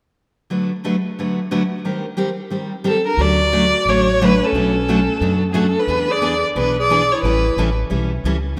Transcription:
0.50 0.70 D3 soft
0.50 0.70 F#3 soft
0.50 0.71 A3 soft
0.50 0.71 D4 soft
0.50 0.71 F#4 soft
0.50 0.71 B4 medium
0.84 0.94 D3 medium
0.84 0.95 F#3 medium
0.84 0.95 A3 medium
0.84 0.95 D4 medium
0.84 0.95 F#4 medium
0.84 0.95 B4 medium
1.19 1.38 D3 medium
1.19 1.38 F#3 soft
1.19 1.39 A3 soft
1.19 1.39 D4 soft
1.19 1.39 F#4 soft
1.19 1.39 B4 soft
1.51 1.62 D3 medium
1.51 1.62 F#3 medium
1.51 1.62 A3 medium
1.51 1.62 D4 medium
1.51 1.62 F#4 medium
1.51 1.62 B4 medium
1.85 2.05 D#3 soft
1.85 2.05 G3 soft
1.85 2.05 C4 soft
1.85 2.05 G4 soft
1.85 2.05 A#4 medium
2.17 2.29 D#3 medium
2.17 2.28 G3 medium
2.17 2.29 C4 medium
2.17 2.29 G4 medium
2.17 2.29 A#4 medium
2.50 2.71 D#3 medium
2.50 2.72 G3 medium
2.50 2.72 C4 medium
2.50 2.72 G4 soft
2.50 2.72 A#4 medium
2.84 2.96 D#3 medium
2.84 2.96 G3 medium
2.84 2.96 C4 medium
2.84 3.04 C4 medium
2.84 2.96 G4 medium
2.84 3.05 A4 medium
2.84 2.96 A#4 medium
3.04 3.19 D4 medium
3.04 3.23 A#4 medium
3.17 3.72 D2 medium
3.17 3.39 D3 soft
3.17 3.40 F#3 soft
3.17 3.40 A3 medium
3.17 3.40 C#4 medium
3.17 3.88 F#4 medium
3.17 3.39 F#4 soft
3.22 3.91 D5 medium
3.52 3.63 D3 medium
3.52 3.64 F#3 medium
3.52 3.64 A3 medium
3.52 3.64 C#4 medium
3.52 3.64 F#4 medium
3.85 4.40 A1 medium
3.85 4.08 D3 soft
3.85 4.08 F#3 soft
3.85 4.08 A3 medium
3.85 4.08 C#4 medium
3.85 4.25 F#4 medium
3.85 4.08 F#4 medium
3.85 4.26 C#5 medium
4.21 4.32 D3 medium
4.21 4.32 F#3 medium
4.21 4.32 A3 medium
4.21 4.32 C#4 medium
4.21 4.44 D4 medium
4.21 4.32 F#4 medium
4.21 4.46 B4 medium
4.43 5.43 C#4 medium
4.43 5.44 A4 medium
4.52 5.07 B1 medium
4.52 4.75 B2 medium
4.52 4.75 F#3 soft
4.52 4.75 A3 medium
4.52 4.75 D4 medium
4.52 4.75 F#4 medium
4.88 4.99 B2 medium
4.88 4.99 F#3 medium
4.88 4.99 A3 medium
4.88 5.00 D4 medium
4.88 4.99 F#4 medium
5.21 5.75 F#2 medium
5.21 5.42 B2 medium
5.21 5.42 F#3 medium
5.21 5.42 A3 soft
5.21 5.42 D4 medium
5.21 5.42 F#4 medium
5.50 5.57 B3 soft
5.50 5.60 G#4 medium
5.54 5.65 B2 medium
5.54 5.66 F#3 medium
5.54 5.65 A3 medium
5.54 5.78 C#4 medium
5.54 5.66 D4 medium
5.54 5.66 F#4 medium
5.59 5.81 A4 medium
5.77 6.11 D4 medium
5.77 6.13 B4 medium
5.87 6.42 E2 medium
5.87 6.09 E3 medium
5.87 6.09 B3 medium
5.87 6.09 D4 medium
5.87 6.10 G#4 medium
6.10 6.43 G#4 medium
6.10 6.44 D5 medium
6.22 6.33 E3 medium
6.22 6.33 B3 medium
6.22 6.33 D4 medium
6.22 6.33 G#4 medium
6.56 7.10 B1 medium
6.56 6.76 E3 medium
6.56 6.77 B3 medium
6.56 6.76 D4 medium
6.56 6.78 D4 medium
6.56 6.77 G#4 medium
6.56 6.78 B4 medium
6.79 7.15 G#4 medium
6.79 7.13 D5 medium
6.90 7.01 E3 medium
6.90 7.01 B3 medium
6.90 7.01 D4 medium
6.90 7.01 G#4 medium
7.12 7.23 E4 medium
7.12 7.23 C#5 medium
7.23 7.50 A1 medium
7.23 7.45 E3 medium
7.23 7.45 G3 soft
7.23 7.45 C#4 medium
7.23 7.74 E4 medium
7.23 7.45 E4 medium
7.23 7.45 A4 medium
7.23 7.74 B4 medium
7.57 7.86 A1 medium
7.57 7.68 E3 medium
7.57 7.69 G3 medium
7.57 7.69 C#4 medium
7.57 7.69 E4 medium
7.57 7.69 A4 medium
7.90 8.19 B1 medium
7.90 8.11 E3 soft
7.90 8.11 G3 medium
7.90 8.11 C#4 medium
7.90 8.11 E4 medium
7.90 8.11 A4 medium
8.24 8.53 C#2 medium
8.24 8.36 E3 medium
8.24 8.36 G3 medium
8.24 8.36 C#4 medium
8.24 8.36 E4 medium
8.24 8.36 A4 medium

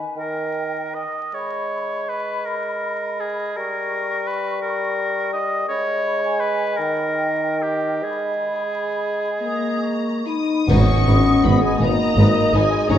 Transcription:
0.00 0.16 G#5 soft
0.16 1.00 D#3 soft
0.16 0.96 A#4 medium
0.16 1.02 G5 soft
0.94 1.36 D#5 medium
1.34 3.58 G#3 soft
1.34 2.10 C#5 medium
1.34 3.53 B5 soft
2.09 2.47 B4 medium
2.46 3.21 A#4 medium
3.20 3.58 G#4 medium
3.56 5.67 G3 soft
3.56 4.29 A#4 medium
3.56 5.38 C#6 soft
4.27 4.61 B4 medium
4.62 5.31 A#4 medium
5.33 5.68 D#5 medium
5.67 6.76 G#3 medium
5.67 6.41 C#5 medium
5.67 6.19 B5 medium
6.23 6.80 G#5 medium
6.40 6.78 B4 medium
6.77 8.04 D#3 medium
6.77 7.64 A#4 medium
6.81 8.05 G5 soft
7.62 8.06 G4 medium
8.03 10.33 G#3 soft
8.03 10.27 G#4 medium
8.03 9.31 B5 soft
9.41 10.24 A#3 medium
9.41 10.24 A#5 medium
9.41 9.82 D#6 soft
9.83 10.27 C#6 soft
10.26 10.67 D#4 medium
10.26 10.67 B5 soft
10.26 10.69 D#6 medium
10.67 10.76 G#1 medium
10.67 10.84 G#1 medium
10.67 11.77 G#2 medium
10.67 10.76 G#2 medium
10.67 11.76 B3 medium
10.67 11.43 C#4 medium
10.67 10.78 D#4 medium
10.67 10.78 B4 medium
10.67 11.77 D#5 medium
10.67 11.44 C#6 medium
10.67 11.77 D#6 medium
10.67 concert bass drum medium
10.67 crash medium
11.06 11.14 G#1 medium
11.06 11.22 G#1 medium
11.06 11.15 G#2 medium
11.06 11.16 D#4 soft
11.06 11.16 B4 medium
11.43 11.52 G#1 medium
11.43 11.59 G#1 medium
11.43 11.51 G#2 medium
11.43 11.63 B3 medium
11.43 11.52 D#4 medium
11.43 11.52 B4 soft
11.43 11.63 B5 medium
11.61 11.80 G#3 medium
11.61 11.81 G#5 medium
11.79 11.87 G#1 medium
11.79 11.96 G#1 medium
11.79 11.89 G#2 medium
11.79 12.53 A#3 medium
11.79 12.87 D#4 medium
11.79 11.89 D#4 soft
11.79 11.90 B4 medium
11.79 12.98 D#5 medium
11.79 12.87 D#5 medium
11.79 12.54 A#5 loud
11.79 12.58 D#6 medium
12.15 12.23 G#1 medium
12.15 12.32 G#1 medium
12.15 12.25 G#2 medium
12.20 12.28 D#4 medium
12.20 12.28 B4 medium
12.52 12.60 G#1 medium
12.52 12.68 G#1 medium
12.52 12.61 G#2 medium
12.52 12.90 G#3 medium
12.52 12.62 D#4 medium
12.52 12.62 B4 medium
12.52 12.90 G#5 loud
12.89 12.97 G1 medium
12.89 12.98 G1 medium
12.89 12.97 G2 medium
12.89 12.98 A#3 medium
12.89 12.98 C#4 medium
12.89 12.98 D#4 medium
12.89 12.98 C#5 medium
12.89 12.98 A#5 loud
12.89 12.98 D#6 medium

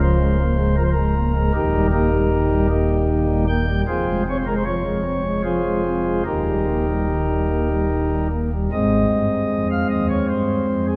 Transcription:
0.00 1.50 C#1 medium
0.00 1.50 C#2 medium
0.00 0.18 F3 medium
0.00 0.75 C5 loud
0.20 0.37 G#3 medium
0.40 0.56 A#3 medium
0.58 0.75 G#3 medium
0.77 0.94 F3 medium
0.77 0.83 A#4 loud
0.84 0.90 C5 loud
0.91 1.52 A#4 loud
0.97 1.14 G#3 medium
1.16 1.33 A#3 medium
1.35 1.51 G#3 medium
1.54 3.82 D#1 loud
1.54 3.82 D#2 medium
1.54 1.87 D#4 medium
1.54 1.87 G4 loud
1.54 1.87 A#4 loud
1.73 1.91 G3 medium
1.92 2.10 A#3 medium
1.92 2.67 D#4 medium
1.92 2.67 G4 loud
1.92 2.67 A#4 loud
2.12 2.29 G3 medium
2.31 2.48 D#3 medium
2.50 2.67 G3 medium
2.69 3.45 A#3 medium
2.69 3.45 D#4 medium
2.69 3.45 G4 loud
2.89 3.06 G3 medium
3.08 3.26 D#3 medium
3.28 3.45 G3 medium
3.48 3.65 A#3 medium
3.48 3.81 G5 loud
3.67 3.84 G3 medium
3.87 6.22 F1 medium
3.87 6.22 F2 medium
3.87 4.23 F4 medium
3.87 4.23 G#4 medium
3.87 4.23 C5 loud
4.07 4.24 G#3 medium
4.27 4.44 C4 medium
4.27 4.37 C#5 loud
4.38 4.46 C5 loud
4.46 4.63 G#3 medium
4.46 4.54 A#4 loud
4.56 4.64 C5 loud
4.65 4.82 F3 medium
4.65 5.42 C#5 loud
4.85 5.02 G#3 medium
5.04 5.22 C4 medium
5.25 5.42 G#3 medium
5.44 5.62 F3 medium
5.44 6.23 F4 medium
5.44 6.23 G#4 medium
5.44 6.23 C5 medium
5.64 5.82 G#3 medium
5.84 6.02 C4 medium
6.05 6.22 G#3 medium
6.25 8.68 D#1 medium
6.25 8.68 D#2 medium
6.25 8.28 D#4 medium
6.25 8.28 G4 medium
6.25 8.27 A#4 medium
6.46 6.65 G3 soft
6.66 6.85 A#3 medium
6.88 7.07 G3 medium
7.08 7.27 D#3 medium
7.30 7.48 G3 medium
7.50 7.68 A#3 medium
7.70 7.88 G3 medium
7.90 8.09 D#3 soft
8.12 8.30 G3 soft
8.33 8.50 A#3 medium
8.53 8.69 G3 medium
8.72 9.06 G#1 medium
8.72 9.06 G#2 medium
8.72 10.96 G#3 soft
8.72 10.96 C4 medium
8.72 9.67 D#5 loud
9.12 9.45 G2 medium
9.52 9.84 F2 medium
9.71 9.87 F5 medium
9.90 10.23 D#2 medium
9.90 10.06 D#5 medium
10.10 10.26 C#5 medium
10.29 10.62 G2 medium
10.29 10.86 C5 medium
10.67 10.96 F2 medium
10.87 10.96 G#4 medium

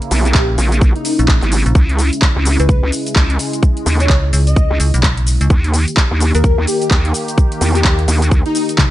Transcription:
0.00 5.46 C#3 medium
0.00 1.71 A#3 medium
0.00 5.46 E4 medium
0.00 closed hi-hat medium
0.11 0.33 B1 loud
0.11 open hi-hat loud
0.11 shaker medium
0.25 0.31 G4 medium
0.25 closed hi-hat medium
0.25 shaker soft
0.35 0.57 A#1 medium
0.35 0.44 G4 medium
0.35 kick loud
0.35 clap loud
0.35 shaker soft
0.58 0.93 A#1 loud
0.58 open hi-hat loud
0.58 shaker medium
0.72 closed hi-hat medium
0.72 shaker soft
0.81 kick loud
0.81 shaker soft
0.96 1.02 D#4 medium
0.96 closed hi-hat soft
1.05 1.14 D#4 medium
1.05 open hi-hat loud
1.05 shaker medium
1.19 1.40 A#1 loud
1.19 closed hi-hat medium
1.19 shaker soft
1.28 kick loud
1.28 clap loud
1.28 shaker soft
1.42 1.64 G#1 medium
1.42 clap soft
1.42 closed hi-hat medium
1.52 open hi-hat loud
1.52 shaker medium
1.66 1.74 A#1 loud
1.66 closed hi-hat medium
1.66 shaker soft
1.75 2.11 C#2 loud
1.75 5.46 G#3 medium
1.75 kick loud
1.75 shaker soft
1.89 closed hi-hat medium
1.99 open hi-hat loud
1.99 shaker medium
2.13 closed hi-hat medium
2.13 shaker soft
2.22 kick loud
2.22 clap loud
2.22 shaker soft
2.36 2.57 C#2 loud
2.45 open hi-hat loud
2.45 shaker medium
2.60 2.81 C#2 loud
2.60 2.66 B4 medium
2.60 closed hi-hat medium
2.60 shaker soft
2.69 2.78 B4 medium
2.69 kick loud
2.69 shaker soft
2.83 2.91 C#2 loud
2.92 open hi-hat loud
2.92 shaker medium
3.07 closed hi-hat medium
3.07 shaker soft
3.16 3.38 C#2 loud
3.16 kick loud
3.16 clap loud
3.16 shaker soft
3.30 closed hi-hat medium
3.39 open hi-hat loud
3.39 shaker medium
3.53 closed hi-hat medium
3.53 shaker soft
3.63 kick loud
3.63 shaker soft
3.77 closed hi-hat medium
3.86 4.08 D#2 medium
3.86 open hi-hat loud
3.86 shaker medium
4.00 4.06 C#5 medium
4.00 closed hi-hat medium
4.00 shaker soft
4.10 4.32 C#2 loud
4.10 4.19 C#5 medium
4.10 kick loud
4.10 clap loud
4.10 shaker soft
4.33 4.68 C#2 loud
4.33 open hi-hat loud
4.33 shaker medium
4.47 4.80 D#5 medium
4.47 closed hi-hat medium
4.47 shaker soft
4.56 kick loud
4.56 shaker soft
4.71 4.78 C#2 loud
4.80 4.92 C#2 loud
4.80 open hi-hat loud
4.80 shaker medium
4.94 5.39 B1 loud
4.94 closed hi-hat medium
4.94 shaker soft
5.03 kick loud
5.03 clap loud
5.03 shaker soft
5.17 closed hi-hat medium
5.27 open hi-hat loud
5.27 shaker medium
5.41 5.49 C#2 loud
5.41 closed hi-hat medium
5.41 shaker soft
5.50 5.86 D#2 loud
5.50 8.90 D#3 medium
5.50 8.90 A#3 medium
5.50 8.90 G4 medium
5.50 kick loud
5.50 shaker soft
5.64 closed hi-hat medium
5.74 open hi-hat medium
5.74 shaker medium
5.88 closed hi-hat medium
5.88 shaker soft
5.97 kick loud
5.97 clap loud
5.97 shaker soft
6.11 6.32 D#2 loud
6.20 open hi-hat loud
6.20 shaker medium
6.35 6.56 D#2 loud
6.35 6.41 A#4 medium
6.35 closed hi-hat medium
6.35 shaker soft
6.44 6.53 A#4 medium
6.44 kick loud
6.44 shaker soft
6.58 6.66 D#2 loud
6.67 6.76 G4 medium
6.67 open hi-hat loud
6.67 shaker medium
6.82 6.87 G4 medium
6.82 closed hi-hat medium
6.82 shaker soft
6.91 7.13 D#2 loud
6.91 kick loud
6.91 clap loud
6.91 shaker soft
7.05 closed hi-hat medium
7.14 open hi-hat loud
7.14 shaker medium
7.28 closed hi-hat medium
7.28 shaker soft
7.38 kick loud
7.38 shaker soft
7.52 closed hi-hat medium
7.61 7.83 E2 loud
7.61 open hi-hat loud
7.61 shaker medium
7.75 7.81 G4 medium
7.75 closed hi-hat medium
7.75 shaker soft
7.85 8.07 D#2 loud
7.85 7.94 G4 medium
7.85 kick loud
7.85 clap loud
7.85 shaker soft
7.99 closed hi-hat soft
8.08 8.43 D#2 loud
8.08 open hi-hat loud
8.08 shaker medium
8.22 closed hi-hat medium
8.22 shaker soft
8.31 kick loud
8.31 shaker soft
8.46 8.52 D#4 medium
8.46 closed hi-hat soft
8.55 8.64 D#4 medium
8.55 open hi-hat loud
8.55 shaker medium
8.69 closed hi-hat medium
8.69 shaker soft
8.78 kick loud
8.78 clap loud
8.78 high tom medium
8.78 shaker soft

